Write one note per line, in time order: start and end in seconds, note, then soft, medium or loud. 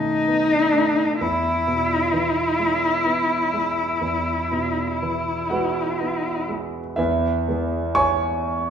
0.00 1.17 B1 soft
0.00 1.23 F#2 soft
0.00 1.24 D#3 soft
0.00 0.55 A3 soft
0.00 1.20 D#4 medium
0.28 1.02 B3 soft
0.73 1.20 A3 soft
1.21 3.97 E2 soft
1.21 6.43 E4 medium
1.67 2.40 B2 soft
2.13 2.87 E3 soft
2.59 3.34 G#3 soft
3.06 3.82 B3 soft
3.54 4.31 G#3 soft
4.01 6.93 E2 soft
4.51 5.33 B2 soft
5.02 5.81 E3 soft
5.50 6.28 G#3 soft
5.50 6.93 F#4 medium
5.50 6.93 B4 medium
5.50 6.96 F#5 medium
6.00 6.78 B3 soft
6.49 6.98 G#3 soft
6.96 7.47 E2 medium
6.96 7.92 E4 medium
6.96 7.92 B4 medium
6.96 7.95 E5 medium
7.48 8.70 E3 soft
7.48 8.70 G#3 soft
7.48 8.70 B3 medium
7.95 8.70 C#5 medium
7.95 8.70 G#5 medium
7.95 8.70 C#6 loud